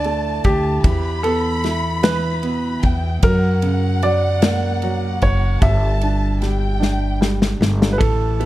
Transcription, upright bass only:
Already playing: D2
0.45 D2
0.84 E2
2.83 E2
3.23 F#2
5.22 F#1
5.62 G1
7.61 G1
8.01 A1

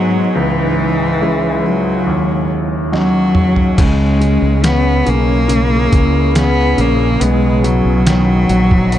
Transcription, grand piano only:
Already playing: G#2 G#3 B3 D#4
0.35 C#2
1.21 G#3 C#4 E4
2.07 D#2
2.92 F#3 C#4 D#4
3.78 C#3
4.21 C#3
4.63 C#3
5.06 C#3
5.48 C#3
5.92 C#3
6.35 C#3
6.78 C#3
7.20 B3
7.63 F#3
8.06 D#3
8.50 F#3

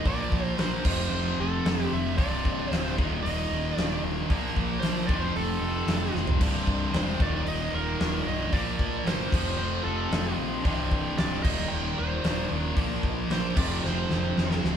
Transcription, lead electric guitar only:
0.07 D5
0.60 C5
1.15 C5
1.41 A4
1.83 G4
1.93 E5
2.18 D5
2.73 C5
3.23 D#5
3.75 D5
4.80 C5
5.07 D5
5.20 C5
5.36 A4
6.96 C5
7.22 D5
7.48 D#5
7.75 A#4
8.27 D#5
8.53 D5
9.07 C5
9.58 C5
9.84 A4
11.19 D5
11.43 D#5
11.68 G5
11.99 C5
13.32 C5
13.57 D5
13.84 C5

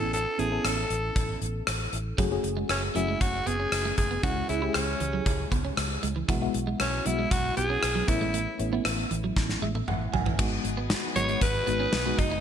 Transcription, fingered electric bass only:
Already playing: A1
0.39 A1
0.65 A1
0.90 A1
1.16 A1
1.42 A1
1.67 A1
1.93 A1
2.18 F#1
2.44 F#1
2.69 F#1
2.95 F#1
3.21 F#1
3.46 F#1
3.72 F#1
3.98 F#1
4.23 C#2
4.49 C#2
4.75 C#2
5.00 C#2
5.26 C#2
5.52 C#2
5.77 C#2
6.03 C#2
6.29 B1
6.55 B1
6.80 B1
7.06 B1
7.31 B1
7.57 B1
7.83 B1
8.08 A1
8.60 A1
8.85 A1
9.11 A1
9.37 A1
9.62 A1
9.88 A1
10.13 A1
10.39 G#1
10.65 G#1
11.16 G#1
11.42 G#1
11.67 G#1
11.93 B1
12.19 F#1

